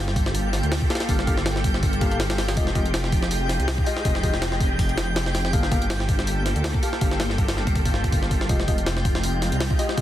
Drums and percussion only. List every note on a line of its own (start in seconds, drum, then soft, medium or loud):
0.08 snare soft
0.16 kick medium
0.16 open hi-hat medium
0.26 snare medium
0.35 open hi-hat medium
0.53 snare soft
0.53 open hi-hat medium
0.63 closed hi-hat soft
0.72 snare loud
0.72 open hi-hat medium
0.82 kick medium
0.90 snare medium
0.90 open hi-hat medium
0.95 snare medium
0.95 open hi-hat medium
1.00 snare loud
1.00 open hi-hat medium
1.09 kick loud
1.09 open hi-hat medium
1.19 snare medium
1.27 kick loud
1.27 open hi-hat medium
1.37 snare medium
1.46 snare loud
1.46 open hi-hat medium
1.56 snare soft
1.64 kick medium
1.64 open hi-hat medium
1.74 snare soft
1.83 kick medium
1.83 open hi-hat medium
1.93 closed hi-hat soft
2.01 kick medium
2.01 open hi-hat medium
2.11 closed hi-hat soft
2.20 snare loud
2.20 open hi-hat medium
2.30 snare loud
2.30 open hi-hat medium
2.38 snare loud
2.38 open hi-hat medium
2.49 snare loud
2.49 open hi-hat medium
2.57 kick loud
2.57 open hi-hat medium
2.67 snare medium
2.75 kick medium
2.75 open hi-hat medium
2.86 closed hi-hat soft
2.94 snare loud
2.94 open hi-hat medium
3.04 snare soft
3.12 kick loud
3.12 open hi-hat medium
3.22 snare medium
3.31 open hi-hat medium
3.49 snare soft
3.49 open hi-hat medium
3.60 closed hi-hat soft
3.68 snare loud
3.68 open hi-hat medium
3.78 kick loud
3.86 open hi-hat medium
3.97 snare soft
4.05 kick loud
4.05 open hi-hat medium
4.15 snare medium
4.23 kick medium
4.23 open hi-hat medium
4.34 snare medium
4.42 snare loud
4.42 open hi-hat medium
4.52 snare soft
4.61 kick loud
4.61 open hi-hat medium
4.79 kick loud
4.79 open hi-hat medium
4.89 closed hi-hat soft
4.98 snare loud
4.98 open hi-hat medium
5.16 snare loud
5.16 open hi-hat medium
5.26 snare medium
5.35 snare medium
5.35 open hi-hat medium
5.45 snare soft
5.53 kick loud
5.53 open hi-hat medium
5.63 snare medium
5.72 kick loud
5.72 open hi-hat medium
5.82 closed hi-hat soft
5.90 snare loud
5.90 open hi-hat medium
6.00 snare soft
6.09 kick medium
6.09 open hi-hat medium
6.19 snare medium
6.27 open hi-hat medium
6.46 snare soft
6.46 open hi-hat medium
6.56 closed hi-hat soft
6.64 snare loud
6.64 open hi-hat medium
6.74 kick loud
6.83 open hi-hat medium
6.93 snare soft
7.01 kick loud
7.01 open hi-hat medium
7.11 snare medium
7.20 snare loud
7.20 open hi-hat medium
7.30 snare soft
7.38 kick medium
7.38 open hi-hat medium
7.48 snare loud
7.48 open hi-hat medium
7.57 snare soft
7.67 kick medium
7.67 open hi-hat medium
7.75 kick medium
7.75 open hi-hat medium
7.86 kick loud
7.86 open hi-hat medium
7.94 snare soft
8.04 kick medium
8.04 open hi-hat medium
8.12 kick loud
8.12 open hi-hat medium
8.23 snare soft
8.31 kick medium
8.31 open hi-hat medium
8.41 snare soft
8.49 kick loud
8.49 open hi-hat medium
8.60 snare soft
8.68 kick medium
8.68 open hi-hat medium
8.78 closed hi-hat soft
8.86 snare loud
8.86 open hi-hat medium
8.97 snare soft
9.05 kick loud
9.05 open hi-hat medium
9.15 snare medium
9.23 open hi-hat medium
9.42 snare soft
9.42 open hi-hat medium
9.52 closed hi-hat soft
9.61 snare loud
9.61 open hi-hat medium
9.71 kick loud
9.79 open hi-hat medium
9.89 snare soft
9.98 kick loud
9.98 open hi-hat medium